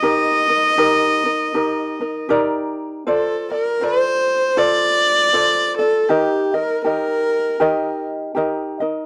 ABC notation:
X:1
M:4/4
L:1/8
Q:"Swing" 1/4=79
K:Eb
V:1 name="Viola"
e6 z2 | [K:Dphr] A B c2 d3 A | G B B3 z3 |]
V:2 name="Ukulele"
[EGB] [EB] [EGB] [EB] [EGB] [EB] [EGBd]2 | [K:Dphr] [FAcd] [Fd] [FAcd]2 [FAcd]2 [FAcd] [FAd] | [EGBe] [EBe] [EGBe]2 [EGBe]2 [EGBe] [EBe] |]